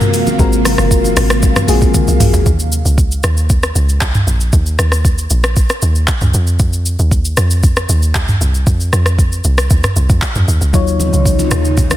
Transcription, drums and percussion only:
0.01 mid tom medium
0.01 high conga medium
0.01 shaker soft
0.14 open hi-hat medium
0.14 shaker medium
0.27 high conga medium
0.27 shaker medium
0.39 kick loud
0.39 shaker medium
0.53 shaker soft
0.65 cross-stick medium
0.65 open hi-hat medium
0.65 high conga medium
0.65 shaker medium
0.78 cross-stick medium
0.78 shaker medium
0.91 kick loud
0.91 shaker medium
1.04 high conga medium
1.04 shaker medium
1.17 cross-stick medium
1.17 open hi-hat medium
1.17 low conga medium
1.17 shaker medium
1.30 cross-stick loud
1.30 shaker medium
1.42 kick loud
1.42 low conga medium
1.42 shaker medium
1.56 cross-stick loud
1.56 mid tom medium
1.56 high conga medium
1.56 shaker medium
1.68 open hi-hat medium
1.68 shaker loud
1.81 kick loud
1.81 high conga medium
1.81 shaker medium
1.94 kick medium
1.94 high tom medium
1.94 shaker medium
2.08 high conga medium
2.08 shaker medium
2.20 mid tom loud
2.20 open hi-hat medium
2.20 shaker medium
2.33 floor tom loud
2.33 high conga medium
2.33 shaker medium
2.46 kick loud
2.46 shaker medium
2.59 shaker soft
2.72 shaker medium
2.85 shaker medium
2.98 kick loud
2.98 shaker medium
3.12 shaker medium
3.23 cross-stick medium
3.23 shaker medium
3.37 shaker medium
3.50 kick loud
3.50 shaker medium
3.63 cross-stick medium
3.63 shaker medium
3.76 shaker medium
3.89 shaker medium
4.01 kick medium
4.01 clap loud
4.01 shaker medium
4.15 mid tom medium
4.15 shaker soft
4.27 shaker medium
4.40 shaker medium
4.53 kick loud
4.53 shaker medium
4.66 shaker soft
4.79 cross-stick medium
4.79 shaker medium
4.92 cross-stick medium
4.92 shaker medium
5.05 kick medium
5.05 shaker medium
5.18 shaker medium
5.30 shaker medium
5.44 cross-stick loud
5.44 shaker medium
5.56 kick loud
5.56 shaker medium
5.70 cross-stick medium
5.70 shaker medium
5.82 shaker loud
5.95 shaker soft
6.08 kick medium
6.08 clap medium
6.08 shaker medium
6.21 mid tom medium
6.21 shaker soft
6.34 shaker medium
6.47 shaker medium
6.59 kick loud
6.59 shaker medium
6.73 shaker soft
6.86 shaker medium
6.99 shaker medium
7.11 kick loud
7.11 shaker medium
7.25 shaker medium
7.37 cross-stick medium
7.37 shaker medium
7.51 shaker medium
7.63 kick loud
7.63 shaker medium
7.76 cross-stick medium
7.76 shaker medium
7.89 shaker medium
8.03 shaker medium
8.15 kick medium
8.15 clap loud
8.15 shaker medium
8.28 mid tom medium
8.28 shaker soft
8.41 shaker medium
8.54 shaker medium
8.67 kick loud
8.67 shaker medium
8.80 shaker soft
8.93 cross-stick medium
8.93 shaker medium
9.06 cross-stick medium
9.06 shaker medium
9.19 kick medium
9.19 shaker medium
9.32 shaker medium
9.44 shaker medium
9.58 cross-stick loud
9.58 shaker medium
9.70 kick loud
9.70 shaker medium
9.84 cross-stick medium
9.84 mid tom medium
9.84 shaker medium
9.96 shaker medium
10.10 kick medium
10.10 shaker soft
10.22 kick medium
10.22 clap medium
10.22 shaker medium
10.35 mid tom medium
10.35 shaker soft
10.48 shaker medium
10.61 shaker medium
10.74 kick loud
10.74 shaker medium
10.87 shaker soft
10.99 high conga medium
10.99 shaker medium
11.13 shaker medium
11.26 kick medium
11.26 shaker medium
11.39 high conga medium
11.39 shaker medium
11.51 cross-stick medium
11.51 low conga medium
11.51 shaker medium
11.65 shaker medium
11.77 kick loud
11.77 low conga medium
11.77 shaker medium
11.91 cross-stick medium
11.91 high conga medium
11.91 shaker medium

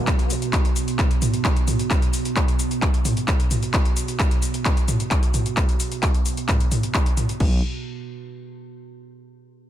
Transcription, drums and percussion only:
0.07 kick loud
0.07 clap loud
0.07 closed hi-hat medium
0.07 shaker soft
0.19 closed hi-hat medium
0.19 shaker soft
0.30 open hi-hat loud
0.30 shaker medium
0.42 closed hi-hat medium
0.42 shaker soft
0.53 kick loud
0.53 clap loud
0.53 closed hi-hat medium
0.53 shaker soft
0.65 closed hi-hat medium
0.65 shaker soft
0.76 open hi-hat medium
0.76 shaker medium
0.88 closed hi-hat medium
0.88 shaker soft
0.99 kick loud
0.99 clap loud
0.99 closed hi-hat medium
0.99 shaker soft
1.11 closed hi-hat medium
1.11 shaker soft
1.22 mid tom loud
1.22 open hi-hat loud
1.22 shaker medium
1.34 closed hi-hat medium
1.34 shaker soft
1.45 kick loud
1.45 clap loud
1.45 closed hi-hat medium
1.45 shaker soft
1.56 closed hi-hat medium
1.56 shaker soft
1.68 mid tom loud
1.68 open hi-hat medium
1.68 shaker medium
1.79 closed hi-hat medium
1.79 shaker soft
1.91 kick loud
1.91 clap loud
1.91 closed hi-hat medium
1.91 shaker soft
2.02 closed hi-hat medium
2.02 shaker soft
2.13 open hi-hat loud
2.13 shaker medium
2.25 closed hi-hat medium
2.25 shaker soft
2.36 kick loud
2.36 clap loud
2.36 closed hi-hat medium
2.36 shaker soft
2.48 closed hi-hat medium
2.48 shaker soft
2.59 open hi-hat medium
2.59 shaker medium
2.71 closed hi-hat medium
2.71 shaker soft
2.82 kick loud
2.82 clap loud
2.82 closed hi-hat medium
2.82 shaker soft
2.94 closed hi-hat medium
2.94 shaker soft
3.05 mid tom medium
3.05 open hi-hat loud
3.05 shaker medium
3.17 closed hi-hat medium
3.17 shaker soft
3.28 kick loud
3.28 clap loud
3.28 closed hi-hat medium
3.28 shaker soft
3.40 closed hi-hat medium
3.40 shaker soft
3.51 mid tom medium
3.51 open hi-hat medium
3.51 shaker medium
3.63 closed hi-hat medium
3.63 shaker soft
3.74 kick loud
3.74 clap loud
3.74 closed hi-hat medium
3.74 shaker soft
3.85 closed hi-hat medium
3.85 shaker soft
3.97 open hi-hat loud
3.97 shaker medium
4.08 closed hi-hat medium
4.08 shaker soft
4.19 kick loud
4.19 clap loud
4.19 closed hi-hat medium
4.19 shaker soft
4.31 closed hi-hat medium
4.31 shaker soft
4.42 open hi-hat medium
4.42 shaker medium
4.54 closed hi-hat medium
4.54 shaker soft
4.65 kick loud
4.65 clap loud
4.65 closed hi-hat medium
4.65 shaker soft
4.77 closed hi-hat medium
4.77 shaker soft
4.88 mid tom medium
4.88 open hi-hat loud
4.88 shaker medium
5.00 closed hi-hat medium
5.00 shaker soft
5.11 kick loud
5.11 clap loud
5.11 closed hi-hat medium
5.11 shaker soft
5.23 closed hi-hat medium
5.23 shaker soft
5.34 mid tom loud
5.34 open hi-hat medium
5.34 shaker medium
5.46 closed hi-hat medium
5.46 shaker soft
5.57 kick loud
5.57 clap loud
5.57 closed hi-hat medium
5.57 shaker soft
5.69 closed hi-hat medium
5.69 shaker soft
5.80 open hi-hat loud
5.80 shaker medium
5.92 closed hi-hat medium
5.92 shaker soft
6.03 kick loud
6.03 clap loud
6.03 closed hi-hat medium
6.03 shaker soft
6.14 closed hi-hat medium
6.14 shaker soft
6.26 open hi-hat medium
6.26 shaker medium
6.37 closed hi-hat medium
6.37 shaker soft
6.49 kick loud
6.49 clap loud
6.49 closed hi-hat medium
6.49 mid tom medium
6.49 shaker soft
6.60 closed hi-hat medium
6.60 shaker soft
6.72 mid tom medium
6.72 open hi-hat loud
6.72 shaker medium
6.83 closed hi-hat medium
6.83 shaker soft
6.94 kick loud
6.94 clap loud
6.94 closed hi-hat medium
6.94 shaker soft
7.06 closed hi-hat medium
7.06 shaker soft
7.17 mid tom medium
7.17 open hi-hat medium
7.17 shaker medium
7.29 closed hi-hat medium
7.29 shaker soft
7.40 kick loud
7.40 crash medium

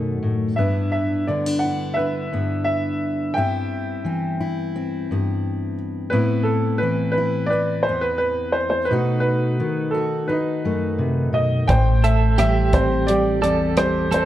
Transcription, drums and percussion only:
11.69 kick medium
11.69 closed hi-hat medium
12.04 closed hi-hat soft
12.38 cross-stick medium
12.38 closed hi-hat soft
12.73 kick medium
12.73 closed hi-hat soft
13.08 closed hi-hat medium
13.43 closed hi-hat soft
13.77 cross-stick medium
13.77 closed hi-hat medium
14.12 closed hi-hat soft

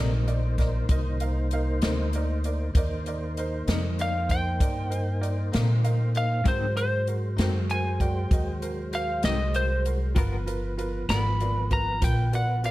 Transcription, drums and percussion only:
0.28 closed hi-hat soft
0.58 kick medium
0.58 snare soft
0.58 closed hi-hat soft
0.89 kick loud
0.89 closed hi-hat medium
1.20 closed hi-hat soft
1.51 closed hi-hat soft
1.82 snare medium
1.82 closed hi-hat medium
2.13 closed hi-hat soft
2.44 closed hi-hat soft
2.75 kick medium
2.75 closed hi-hat medium
3.06 closed hi-hat soft
3.37 closed hi-hat soft
3.68 snare medium
3.68 closed hi-hat medium
3.99 closed hi-hat soft
4.29 kick medium
4.29 closed hi-hat medium
4.60 kick medium
4.60 closed hi-hat medium
4.92 closed hi-hat soft
5.23 closed hi-hat soft
5.53 snare medium
5.53 closed hi-hat medium
5.84 closed hi-hat soft
6.15 closed hi-hat soft
6.45 kick medium
6.45 closed hi-hat medium
6.77 closed hi-hat soft
7.07 closed hi-hat soft
7.38 snare medium
7.38 closed hi-hat medium
7.70 closed hi-hat soft
8.00 kick medium
8.00 closed hi-hat soft
8.31 kick medium
8.31 closed hi-hat medium
8.62 closed hi-hat soft
8.93 closed hi-hat medium
9.23 snare medium
9.23 closed hi-hat medium
9.54 closed hi-hat soft
9.85 closed hi-hat soft
10.16 kick loud
10.16 closed hi-hat medium
10.47 closed hi-hat soft
10.79 closed hi-hat soft
11.09 snare medium
11.09 closed hi-hat medium
11.40 closed hi-hat soft
11.71 kick medium
11.71 closed hi-hat soft
12.02 kick medium
12.02 closed hi-hat medium
12.33 closed hi-hat soft
12.64 closed hi-hat soft

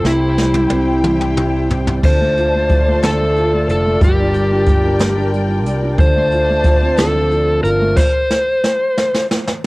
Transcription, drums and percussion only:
0.05 snare soft
0.38 snare medium
0.54 high tom soft
0.70 high tom medium
1.04 mid tom medium
1.21 mid tom medium
1.37 mid tom medium
1.71 floor tom medium
1.87 floor tom medium
2.03 kick medium
2.03 crash medium
2.37 closed hi-hat soft
2.69 kick medium
2.69 closed hi-hat medium
3.02 snare medium
3.02 closed hi-hat medium
3.36 closed hi-hat soft
3.69 closed hi-hat medium
4.01 kick loud
4.01 closed hi-hat medium
4.34 closed hi-hat medium
4.66 kick medium
4.66 closed hi-hat medium
4.99 snare medium
4.99 closed hi-hat medium
5.33 closed hi-hat soft
5.66 closed hi-hat medium
5.98 kick loud
5.98 closed hi-hat medium
6.31 closed hi-hat medium
6.64 kick medium
6.64 closed hi-hat medium
6.97 snare loud
6.97 closed hi-hat medium
7.31 closed hi-hat soft
7.65 closed hi-hat medium
7.97 kick loud
7.97 snare medium
7.97 crash medium
8.31 snare medium
8.64 snare medium
8.98 snare medium
9.15 snare medium
9.31 snare medium
9.47 snare medium

